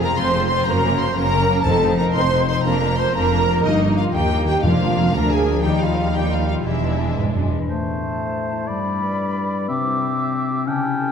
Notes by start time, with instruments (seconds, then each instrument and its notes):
Already playing: double bass section F1, cello section F2, timpani F2, harp F2 G#4
0.00 violin section C4 F4 A#5, harp C4, viola section A#4
0.16 double bass section F1, cello section F2, violin section C4 F4 C6, harp G#4, viola section C5
0.34 harp C3, violin section C4 F4
0.48 violin section C4 F4 C6, harp G#4, viola section C5
0.65 double bass section F#1, harp F#2, cello section F#2, violin section A#3 C#4 A#5, viola section A#4
0.83 violin section A#3 C#4, harp C#5
0.99 violin section A#3 C#4 C6, harp A#3, viola section C5
1.15 double bass section F#1, cello section F#2, violin section A#3 C#4 A#5, viola section A#4, harp C#5
1.33 harp C#3, violin section A#3 C#4
1.50 violin section A#3 C#4, harp C#5
1.65 double bass section F1, timpani F2, harp F2, cello section F2, violin section C4 D#4 A5, viola section A4
1.82 violin section C4 D#4, harp D#5
1.98 violin section C4 D#4 A#5, harp C4, viola section A#4
2.14 double bass section F1, cello section F2, violin section C4 D#4 C6, viola section C5, harp D#5
2.31 harp C3, violin section C4 D#4
2.48 violin section C4 D#4 C6, viola section C5, harp D#5
2.64 double bass section F1, harp F2, cello section F2, violin section A#3 D4 A#5, viola section A#4
2.81 violin section A#3 D4, harp D5
2.97 violin section A#3 D4 C6, harp A#3, viola section C5
3.14 double bass section F1, cello section F2, violin section A#3 D4 A#5, viola section A#4, harp D5
3.31 harp F3, violin section A#3 D4
3.48 violin section A#3 D4, harp D5
3.64 double bass section G1, harp G2, cello section G2, violin section A#3 D#4 D#5, viola section D#4
3.81 harp A#4
3.97 harp A#3, viola section F4, violin section F5
4.14 double bass section D#2, cello section D#2, violin section A#3 D#4 G5, viola section G4, harp A#4
4.32 harp G3
4.47 viola section G4, harp A#4, violin section G5
4.64 double bass section F1, timpani F2, cello section F2, harp F2, violin section A#3 D4 F5, viola section F4
4.81 harp A#4
4.98 harp A#3
5.14 double bass section D2, cello section D2, violin section A#3 D4 A#5, harp A#4, viola section A#4
5.31 harp F3, viola section G#4, violin section G#5
5.49 harp A#4
5.63 double bass section D#2, cello section D#2, harp D#3, violin section G3 D#4 G5, viola section G4
5.80 viola section F4, harp G4, violin section F5
5.99 harp D#4
6.14 violin section G3 D#4 G5, viola section G4, harp G4
6.31 harp G3, viola section F4, violin section F5
6.48 viola section F4, harp G4, violin section F5
6.64 double bass section E1, cello section E2, harp E3, violin section G#3 D4 E5, viola section E4
6.84 harp B4
7.01 harp D4
7.18 cello section G#2, harp B4
7.35 cello section F#2, harp B3
7.51 cello section E2, harp B4
7.68 harp A2, clarinet A3, oboe C5, flute A5
7.86 harp C4
8.02 harp A4
8.19 harp C5
8.36 harp A4
8.52 harp E4
8.67 harp G2, clarinet G3, oboe D5, flute B5
8.85 harp D4
9.02 harp B4
9.19 harp D5
9.35 harp B4
9.52 harp G4
9.68 harp C3, clarinet C4, oboe E5, flute D6
9.85 harp E4
10.01 harp D5
10.18 harp E5
10.35 harp D5
10.51 harp G4
10.67 harp C#3, clarinet C#4, oboe G5, flute A5
10.84 harp E4
11.00 harp A4